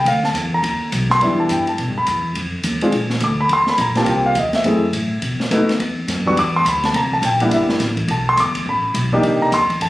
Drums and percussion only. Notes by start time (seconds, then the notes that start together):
0.06 ride
0.24 snare
0.35 hi-hat pedal, ride
0.64 ride
0.92 hi-hat pedal, ride
1.10 snare
1.21 ride
1.49 hi-hat pedal, ride
1.67 ride
1.78 ride
2.06 hi-hat pedal, ride
2.35 ride
2.63 hi-hat pedal, ride
2.81 ride
2.92 ride
3.10 snare
3.20 hi-hat pedal, ride
3.49 ride
3.67 snare
3.78 hi-hat pedal, ride
3.95 snare, ride
4.06 ride
4.35 hi-hat pedal, ride
4.53 snare, ride
4.64 ride
4.93 hi-hat pedal, ride
5.22 ride
5.40 snare
5.51 hi-hat pedal, ride
5.69 snare, ride
5.80 ride
6.08 snare, hi-hat pedal, ride
6.26 kick
6.37 ride
6.66 hi-hat pedal, ride
6.83 snare, ride
6.94 ride
7.12 kick
7.23 hi-hat pedal, ride
7.40 ride
7.51 ride
7.69 snare
7.80 snare, hi-hat pedal, ride
7.97 kick, ride
8.08 ride
8.37 hi-hat pedal, ride
8.55 kick, ride
8.95 hi-hat pedal, ride
9.12 kick
9.23 ride
9.52 hi-hat pedal, ride
9.70 kick, ride
9.81 ride